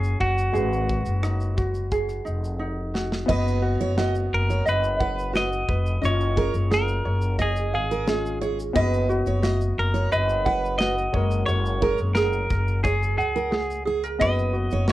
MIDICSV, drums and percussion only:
0, 0, Header, 1, 2, 480
1, 0, Start_track
1, 0, Tempo, 683371
1, 388, Time_signature, 4, 2, 24, 8
1, 10481, End_track
2, 0, Start_track
2, 0, Title_t, "Drums"
2, 26, Note_on_c, 9, 82, 50
2, 97, Note_off_c, 9, 82, 0
2, 145, Note_on_c, 9, 36, 78
2, 216, Note_off_c, 9, 36, 0
2, 269, Note_on_c, 9, 82, 52
2, 339, Note_off_c, 9, 82, 0
2, 390, Note_on_c, 9, 82, 68
2, 460, Note_off_c, 9, 82, 0
2, 513, Note_on_c, 9, 82, 49
2, 583, Note_off_c, 9, 82, 0
2, 627, Note_on_c, 9, 82, 42
2, 629, Note_on_c, 9, 36, 78
2, 697, Note_off_c, 9, 82, 0
2, 699, Note_off_c, 9, 36, 0
2, 743, Note_on_c, 9, 82, 53
2, 813, Note_off_c, 9, 82, 0
2, 865, Note_on_c, 9, 37, 102
2, 870, Note_on_c, 9, 82, 70
2, 935, Note_off_c, 9, 37, 0
2, 940, Note_off_c, 9, 82, 0
2, 987, Note_on_c, 9, 82, 44
2, 1057, Note_off_c, 9, 82, 0
2, 1109, Note_on_c, 9, 36, 92
2, 1110, Note_on_c, 9, 82, 50
2, 1179, Note_off_c, 9, 36, 0
2, 1180, Note_off_c, 9, 82, 0
2, 1226, Note_on_c, 9, 82, 46
2, 1296, Note_off_c, 9, 82, 0
2, 1346, Note_on_c, 9, 82, 65
2, 1347, Note_on_c, 9, 36, 78
2, 1417, Note_off_c, 9, 36, 0
2, 1417, Note_off_c, 9, 82, 0
2, 1467, Note_on_c, 9, 37, 32
2, 1468, Note_on_c, 9, 82, 50
2, 1537, Note_off_c, 9, 37, 0
2, 1538, Note_off_c, 9, 82, 0
2, 1591, Note_on_c, 9, 82, 48
2, 1661, Note_off_c, 9, 82, 0
2, 1716, Note_on_c, 9, 82, 48
2, 1786, Note_off_c, 9, 82, 0
2, 2072, Note_on_c, 9, 38, 75
2, 2143, Note_off_c, 9, 38, 0
2, 2193, Note_on_c, 9, 38, 80
2, 2263, Note_off_c, 9, 38, 0
2, 2311, Note_on_c, 9, 36, 105
2, 2313, Note_on_c, 9, 49, 91
2, 2381, Note_off_c, 9, 36, 0
2, 2384, Note_off_c, 9, 49, 0
2, 2443, Note_on_c, 9, 82, 51
2, 2513, Note_off_c, 9, 82, 0
2, 2672, Note_on_c, 9, 82, 56
2, 2742, Note_off_c, 9, 82, 0
2, 2794, Note_on_c, 9, 38, 103
2, 2799, Note_on_c, 9, 82, 69
2, 2864, Note_off_c, 9, 38, 0
2, 2869, Note_off_c, 9, 82, 0
2, 2915, Note_on_c, 9, 82, 48
2, 2985, Note_off_c, 9, 82, 0
2, 3163, Note_on_c, 9, 82, 50
2, 3233, Note_off_c, 9, 82, 0
2, 3279, Note_on_c, 9, 82, 75
2, 3349, Note_off_c, 9, 82, 0
2, 3398, Note_on_c, 9, 82, 54
2, 3468, Note_off_c, 9, 82, 0
2, 3516, Note_on_c, 9, 36, 85
2, 3586, Note_off_c, 9, 36, 0
2, 3645, Note_on_c, 9, 82, 50
2, 3715, Note_off_c, 9, 82, 0
2, 3761, Note_on_c, 9, 82, 78
2, 3762, Note_on_c, 9, 38, 100
2, 3831, Note_off_c, 9, 82, 0
2, 3833, Note_off_c, 9, 38, 0
2, 3881, Note_on_c, 9, 82, 49
2, 3951, Note_off_c, 9, 82, 0
2, 3994, Note_on_c, 9, 36, 85
2, 4065, Note_off_c, 9, 36, 0
2, 4118, Note_on_c, 9, 82, 53
2, 4189, Note_off_c, 9, 82, 0
2, 4239, Note_on_c, 9, 82, 71
2, 4310, Note_off_c, 9, 82, 0
2, 4358, Note_on_c, 9, 82, 51
2, 4428, Note_off_c, 9, 82, 0
2, 4475, Note_on_c, 9, 82, 46
2, 4476, Note_on_c, 9, 36, 81
2, 4546, Note_off_c, 9, 36, 0
2, 4546, Note_off_c, 9, 82, 0
2, 4593, Note_on_c, 9, 82, 58
2, 4663, Note_off_c, 9, 82, 0
2, 4717, Note_on_c, 9, 38, 103
2, 4722, Note_on_c, 9, 82, 75
2, 4787, Note_off_c, 9, 38, 0
2, 4792, Note_off_c, 9, 82, 0
2, 4833, Note_on_c, 9, 82, 46
2, 4903, Note_off_c, 9, 82, 0
2, 5070, Note_on_c, 9, 82, 49
2, 5141, Note_off_c, 9, 82, 0
2, 5192, Note_on_c, 9, 36, 77
2, 5192, Note_on_c, 9, 82, 71
2, 5262, Note_off_c, 9, 36, 0
2, 5262, Note_off_c, 9, 82, 0
2, 5311, Note_on_c, 9, 82, 56
2, 5381, Note_off_c, 9, 82, 0
2, 5558, Note_on_c, 9, 82, 48
2, 5628, Note_off_c, 9, 82, 0
2, 5670, Note_on_c, 9, 82, 79
2, 5671, Note_on_c, 9, 38, 99
2, 5740, Note_off_c, 9, 82, 0
2, 5741, Note_off_c, 9, 38, 0
2, 5798, Note_on_c, 9, 82, 54
2, 5869, Note_off_c, 9, 82, 0
2, 5915, Note_on_c, 9, 82, 52
2, 5985, Note_off_c, 9, 82, 0
2, 6037, Note_on_c, 9, 82, 56
2, 6108, Note_off_c, 9, 82, 0
2, 6150, Note_on_c, 9, 36, 118
2, 6151, Note_on_c, 9, 82, 78
2, 6220, Note_off_c, 9, 36, 0
2, 6221, Note_off_c, 9, 82, 0
2, 6276, Note_on_c, 9, 82, 47
2, 6346, Note_off_c, 9, 82, 0
2, 6394, Note_on_c, 9, 82, 44
2, 6464, Note_off_c, 9, 82, 0
2, 6506, Note_on_c, 9, 82, 55
2, 6577, Note_off_c, 9, 82, 0
2, 6627, Note_on_c, 9, 38, 108
2, 6632, Note_on_c, 9, 82, 71
2, 6698, Note_off_c, 9, 38, 0
2, 6703, Note_off_c, 9, 82, 0
2, 6752, Note_on_c, 9, 82, 47
2, 6822, Note_off_c, 9, 82, 0
2, 6987, Note_on_c, 9, 82, 51
2, 7058, Note_off_c, 9, 82, 0
2, 7108, Note_on_c, 9, 82, 75
2, 7179, Note_off_c, 9, 82, 0
2, 7230, Note_on_c, 9, 82, 55
2, 7300, Note_off_c, 9, 82, 0
2, 7349, Note_on_c, 9, 36, 85
2, 7419, Note_off_c, 9, 36, 0
2, 7481, Note_on_c, 9, 82, 48
2, 7551, Note_off_c, 9, 82, 0
2, 7590, Note_on_c, 9, 82, 76
2, 7591, Note_on_c, 9, 38, 93
2, 7660, Note_off_c, 9, 82, 0
2, 7662, Note_off_c, 9, 38, 0
2, 7713, Note_on_c, 9, 82, 56
2, 7784, Note_off_c, 9, 82, 0
2, 7824, Note_on_c, 9, 36, 104
2, 7894, Note_off_c, 9, 36, 0
2, 7945, Note_on_c, 9, 82, 52
2, 8015, Note_off_c, 9, 82, 0
2, 8063, Note_on_c, 9, 82, 72
2, 8133, Note_off_c, 9, 82, 0
2, 8188, Note_on_c, 9, 82, 49
2, 8258, Note_off_c, 9, 82, 0
2, 8304, Note_on_c, 9, 36, 77
2, 8374, Note_off_c, 9, 36, 0
2, 8413, Note_on_c, 9, 82, 56
2, 8483, Note_off_c, 9, 82, 0
2, 8537, Note_on_c, 9, 38, 108
2, 8542, Note_on_c, 9, 82, 77
2, 8607, Note_off_c, 9, 38, 0
2, 8612, Note_off_c, 9, 82, 0
2, 8659, Note_on_c, 9, 82, 47
2, 8729, Note_off_c, 9, 82, 0
2, 8781, Note_on_c, 9, 82, 52
2, 8783, Note_on_c, 9, 36, 99
2, 8851, Note_off_c, 9, 82, 0
2, 8854, Note_off_c, 9, 36, 0
2, 8904, Note_on_c, 9, 82, 51
2, 8975, Note_off_c, 9, 82, 0
2, 9023, Note_on_c, 9, 36, 90
2, 9024, Note_on_c, 9, 82, 71
2, 9093, Note_off_c, 9, 36, 0
2, 9094, Note_off_c, 9, 82, 0
2, 9150, Note_on_c, 9, 82, 58
2, 9220, Note_off_c, 9, 82, 0
2, 9271, Note_on_c, 9, 82, 48
2, 9341, Note_off_c, 9, 82, 0
2, 9392, Note_on_c, 9, 82, 52
2, 9462, Note_off_c, 9, 82, 0
2, 9498, Note_on_c, 9, 82, 77
2, 9499, Note_on_c, 9, 38, 96
2, 9568, Note_off_c, 9, 82, 0
2, 9570, Note_off_c, 9, 38, 0
2, 9626, Note_on_c, 9, 82, 53
2, 9696, Note_off_c, 9, 82, 0
2, 9864, Note_on_c, 9, 82, 52
2, 9935, Note_off_c, 9, 82, 0
2, 9981, Note_on_c, 9, 36, 112
2, 9982, Note_on_c, 9, 82, 74
2, 10051, Note_off_c, 9, 36, 0
2, 10052, Note_off_c, 9, 82, 0
2, 10105, Note_on_c, 9, 82, 45
2, 10175, Note_off_c, 9, 82, 0
2, 10215, Note_on_c, 9, 82, 43
2, 10286, Note_off_c, 9, 82, 0
2, 10331, Note_on_c, 9, 82, 57
2, 10401, Note_off_c, 9, 82, 0
2, 10450, Note_on_c, 9, 38, 110
2, 10455, Note_on_c, 9, 82, 73
2, 10481, Note_off_c, 9, 38, 0
2, 10481, Note_off_c, 9, 82, 0
2, 10481, End_track
0, 0, End_of_file